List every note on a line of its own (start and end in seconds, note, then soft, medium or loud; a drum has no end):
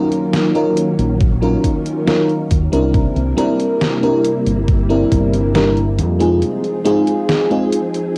0.00 2.91 D#3 medium
0.00 0.50 F#3 medium
0.00 2.91 F#3 medium
0.00 2.90 A#3 medium
0.00 0.50 C#4 medium
0.00 2.91 C#4 medium
0.00 0.50 D#4 medium
0.00 0.50 F4 medium
0.00 0.50 A#4 loud
0.12 closed hi-hat medium
0.33 snare loud
0.33 closed hi-hat soft
0.54 0.82 F#3 medium
0.54 0.82 C#4 medium
0.54 0.82 D#4 medium
0.54 0.82 F4 medium
0.54 0.82 A#4 medium
0.54 closed hi-hat soft
0.77 closed hi-hat medium
0.99 1.56 A#1 loud
0.99 closed hi-hat soft
1.20 kick loud
1.20 closed hi-hat soft
1.41 2.02 F#3 medium
1.41 2.02 C#4 medium
1.41 2.02 D#4 medium
1.41 2.02 F4 medium
1.41 2.02 A#4 medium
1.41 closed hi-hat soft
1.64 kick medium
1.64 closed hi-hat medium
1.86 closed hi-hat soft
2.07 2.34 F#3 medium
2.07 2.34 C#4 medium
2.07 2.34 D#4 medium
2.07 2.35 F4 medium
2.07 2.35 A#4 medium
2.07 snare loud
2.07 closed hi-hat soft
2.29 closed hi-hat soft
2.51 2.68 D#2 medium
2.51 kick medium
2.51 closed hi-hat medium
2.72 3.06 C2 medium
2.72 3.32 G3 medium
2.72 3.32 C4 medium
2.72 3.33 D4 medium
2.72 3.33 E4 medium
2.72 3.33 A#4 medium
2.72 closed hi-hat soft
2.94 6.39 C3 medium
2.94 6.39 G3 medium
2.94 6.39 A#3 medium
2.94 6.39 E4 medium
2.94 kick loud
2.94 closed hi-hat soft
3.16 3.33 C2 medium
3.16 closed hi-hat soft
3.37 3.97 G3 loud
3.37 3.98 C4 medium
3.37 3.98 D4 medium
3.37 3.98 E4 medium
3.37 3.98 A#4 loud
3.37 closed hi-hat medium
3.60 closed hi-hat medium
3.81 snare loud
3.81 closed hi-hat soft
4.02 4.30 G3 medium
4.02 4.30 C4 medium
4.02 4.30 D4 medium
4.02 4.30 E4 medium
4.02 4.30 A#4 medium
4.02 closed hi-hat soft
4.25 closed hi-hat medium
4.46 5.03 G1 loud
4.46 closed hi-hat medium
4.68 kick loud
4.68 closed hi-hat soft
4.89 5.50 G3 medium
4.89 5.50 C4 medium
4.89 5.50 D4 medium
4.89 5.50 E4 medium
4.89 5.50 A#4 medium
4.89 closed hi-hat soft
5.12 6.00 G1 loud
5.12 kick medium
5.12 closed hi-hat medium
5.33 closed hi-hat medium
5.54 5.82 G3 medium
5.54 5.82 C4 medium
5.54 5.82 D4 medium
5.54 5.82 E4 medium
5.54 5.82 A#4 medium
5.54 snare loud
5.54 closed hi-hat soft
5.77 closed hi-hat soft
5.99 6.42 F2 loud
5.99 closed hi-hat medium
6.19 6.80 G#3 medium
6.19 6.80 C4 medium
6.19 6.80 D#4 medium
6.19 6.80 F4 medium
6.19 6.81 G#4 medium
6.19 closed hi-hat medium
6.42 8.18 F3 medium
6.42 8.18 C4 medium
6.42 8.18 D#4 medium
6.42 8.18 G#4 medium
6.42 closed hi-hat medium
6.64 closed hi-hat soft
6.85 7.45 G#3 loud
6.85 7.45 C4 medium
6.85 7.46 D#4 medium
6.85 7.46 F4 medium
6.85 7.46 G#4 loud
6.85 closed hi-hat medium
7.07 closed hi-hat medium
7.29 snare loud
7.29 closed hi-hat soft
7.50 7.77 G#3 medium
7.50 7.78 C4 medium
7.50 7.78 D#4 medium
7.50 7.78 F4 medium
7.50 7.78 G#4 medium
7.50 closed hi-hat soft
7.72 closed hi-hat medium
7.94 closed hi-hat soft